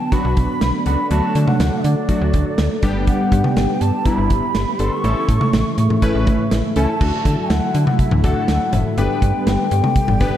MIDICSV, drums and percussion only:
0, 0, Header, 1, 2, 480
1, 0, Start_track
1, 0, Key_signature, 2, "major"
1, 0, Tempo, 491803
1, 1080, Time_signature, 4, 2, 24, 8
1, 10122, End_track
2, 0, Start_track
2, 0, Title_t, "Drums"
2, 118, Note_on_c, 9, 36, 83
2, 118, Note_on_c, 9, 42, 67
2, 215, Note_off_c, 9, 36, 0
2, 215, Note_off_c, 9, 42, 0
2, 359, Note_on_c, 9, 42, 74
2, 363, Note_on_c, 9, 36, 91
2, 457, Note_off_c, 9, 42, 0
2, 460, Note_off_c, 9, 36, 0
2, 598, Note_on_c, 9, 38, 121
2, 599, Note_on_c, 9, 42, 69
2, 695, Note_off_c, 9, 38, 0
2, 697, Note_off_c, 9, 42, 0
2, 837, Note_on_c, 9, 42, 80
2, 935, Note_off_c, 9, 42, 0
2, 1080, Note_on_c, 9, 42, 64
2, 1178, Note_off_c, 9, 42, 0
2, 1321, Note_on_c, 9, 42, 79
2, 1418, Note_off_c, 9, 42, 0
2, 1440, Note_on_c, 9, 47, 96
2, 1538, Note_off_c, 9, 47, 0
2, 1560, Note_on_c, 9, 42, 73
2, 1562, Note_on_c, 9, 38, 111
2, 1657, Note_off_c, 9, 42, 0
2, 1660, Note_off_c, 9, 38, 0
2, 1799, Note_on_c, 9, 42, 77
2, 1897, Note_off_c, 9, 42, 0
2, 2038, Note_on_c, 9, 36, 82
2, 2038, Note_on_c, 9, 42, 68
2, 2135, Note_off_c, 9, 36, 0
2, 2135, Note_off_c, 9, 42, 0
2, 2279, Note_on_c, 9, 42, 74
2, 2283, Note_on_c, 9, 36, 92
2, 2377, Note_off_c, 9, 42, 0
2, 2380, Note_off_c, 9, 36, 0
2, 2518, Note_on_c, 9, 38, 122
2, 2519, Note_on_c, 9, 42, 68
2, 2616, Note_off_c, 9, 38, 0
2, 2617, Note_off_c, 9, 42, 0
2, 2757, Note_on_c, 9, 42, 80
2, 2761, Note_on_c, 9, 36, 93
2, 2855, Note_off_c, 9, 42, 0
2, 2858, Note_off_c, 9, 36, 0
2, 3000, Note_on_c, 9, 42, 65
2, 3001, Note_on_c, 9, 36, 104
2, 3098, Note_off_c, 9, 36, 0
2, 3098, Note_off_c, 9, 42, 0
2, 3239, Note_on_c, 9, 36, 90
2, 3240, Note_on_c, 9, 42, 81
2, 3337, Note_off_c, 9, 36, 0
2, 3338, Note_off_c, 9, 42, 0
2, 3359, Note_on_c, 9, 47, 94
2, 3457, Note_off_c, 9, 47, 0
2, 3480, Note_on_c, 9, 42, 72
2, 3483, Note_on_c, 9, 38, 109
2, 3577, Note_off_c, 9, 42, 0
2, 3580, Note_off_c, 9, 38, 0
2, 3719, Note_on_c, 9, 42, 78
2, 3817, Note_off_c, 9, 42, 0
2, 3958, Note_on_c, 9, 36, 84
2, 3958, Note_on_c, 9, 42, 69
2, 4055, Note_off_c, 9, 36, 0
2, 4055, Note_off_c, 9, 42, 0
2, 4199, Note_on_c, 9, 42, 77
2, 4202, Note_on_c, 9, 36, 95
2, 4297, Note_off_c, 9, 42, 0
2, 4300, Note_off_c, 9, 36, 0
2, 4437, Note_on_c, 9, 38, 121
2, 4439, Note_on_c, 9, 42, 67
2, 4535, Note_off_c, 9, 38, 0
2, 4536, Note_off_c, 9, 42, 0
2, 4677, Note_on_c, 9, 42, 85
2, 4774, Note_off_c, 9, 42, 0
2, 4920, Note_on_c, 9, 42, 62
2, 5018, Note_off_c, 9, 42, 0
2, 5159, Note_on_c, 9, 36, 90
2, 5160, Note_on_c, 9, 42, 81
2, 5257, Note_off_c, 9, 36, 0
2, 5258, Note_off_c, 9, 42, 0
2, 5279, Note_on_c, 9, 47, 95
2, 5377, Note_off_c, 9, 47, 0
2, 5400, Note_on_c, 9, 42, 73
2, 5403, Note_on_c, 9, 38, 112
2, 5498, Note_off_c, 9, 42, 0
2, 5500, Note_off_c, 9, 38, 0
2, 5639, Note_on_c, 9, 42, 80
2, 5737, Note_off_c, 9, 42, 0
2, 5761, Note_on_c, 9, 45, 95
2, 5859, Note_off_c, 9, 45, 0
2, 5878, Note_on_c, 9, 36, 86
2, 5878, Note_on_c, 9, 42, 69
2, 5976, Note_off_c, 9, 36, 0
2, 5976, Note_off_c, 9, 42, 0
2, 6118, Note_on_c, 9, 45, 95
2, 6120, Note_on_c, 9, 42, 73
2, 6123, Note_on_c, 9, 36, 92
2, 6216, Note_off_c, 9, 45, 0
2, 6217, Note_off_c, 9, 42, 0
2, 6220, Note_off_c, 9, 36, 0
2, 6358, Note_on_c, 9, 38, 120
2, 6359, Note_on_c, 9, 42, 69
2, 6455, Note_off_c, 9, 38, 0
2, 6456, Note_off_c, 9, 42, 0
2, 6597, Note_on_c, 9, 42, 82
2, 6694, Note_off_c, 9, 42, 0
2, 6840, Note_on_c, 9, 49, 98
2, 6841, Note_on_c, 9, 36, 112
2, 6937, Note_off_c, 9, 49, 0
2, 6938, Note_off_c, 9, 36, 0
2, 7079, Note_on_c, 9, 36, 95
2, 7080, Note_on_c, 9, 42, 82
2, 7177, Note_off_c, 9, 36, 0
2, 7178, Note_off_c, 9, 42, 0
2, 7320, Note_on_c, 9, 42, 75
2, 7323, Note_on_c, 9, 38, 117
2, 7418, Note_off_c, 9, 42, 0
2, 7421, Note_off_c, 9, 38, 0
2, 7559, Note_on_c, 9, 42, 80
2, 7657, Note_off_c, 9, 42, 0
2, 7681, Note_on_c, 9, 47, 96
2, 7779, Note_off_c, 9, 47, 0
2, 7798, Note_on_c, 9, 36, 87
2, 7798, Note_on_c, 9, 42, 70
2, 7896, Note_off_c, 9, 36, 0
2, 7896, Note_off_c, 9, 42, 0
2, 7919, Note_on_c, 9, 45, 96
2, 8016, Note_off_c, 9, 45, 0
2, 8040, Note_on_c, 9, 42, 80
2, 8043, Note_on_c, 9, 36, 92
2, 8137, Note_off_c, 9, 42, 0
2, 8141, Note_off_c, 9, 36, 0
2, 8278, Note_on_c, 9, 38, 120
2, 8279, Note_on_c, 9, 42, 71
2, 8375, Note_off_c, 9, 38, 0
2, 8377, Note_off_c, 9, 42, 0
2, 8517, Note_on_c, 9, 42, 83
2, 8520, Note_on_c, 9, 45, 97
2, 8520, Note_on_c, 9, 56, 71
2, 8615, Note_off_c, 9, 42, 0
2, 8617, Note_off_c, 9, 45, 0
2, 8617, Note_off_c, 9, 56, 0
2, 8761, Note_on_c, 9, 42, 68
2, 8858, Note_off_c, 9, 42, 0
2, 9000, Note_on_c, 9, 36, 94
2, 9001, Note_on_c, 9, 42, 84
2, 9097, Note_off_c, 9, 36, 0
2, 9099, Note_off_c, 9, 42, 0
2, 9240, Note_on_c, 9, 42, 76
2, 9243, Note_on_c, 9, 38, 116
2, 9338, Note_off_c, 9, 42, 0
2, 9341, Note_off_c, 9, 38, 0
2, 9480, Note_on_c, 9, 42, 81
2, 9577, Note_off_c, 9, 42, 0
2, 9602, Note_on_c, 9, 47, 97
2, 9699, Note_off_c, 9, 47, 0
2, 9718, Note_on_c, 9, 36, 88
2, 9718, Note_on_c, 9, 42, 68
2, 9816, Note_off_c, 9, 36, 0
2, 9816, Note_off_c, 9, 42, 0
2, 9839, Note_on_c, 9, 45, 96
2, 9936, Note_off_c, 9, 45, 0
2, 9960, Note_on_c, 9, 42, 77
2, 9963, Note_on_c, 9, 36, 93
2, 10057, Note_off_c, 9, 42, 0
2, 10061, Note_off_c, 9, 36, 0
2, 10122, End_track
0, 0, End_of_file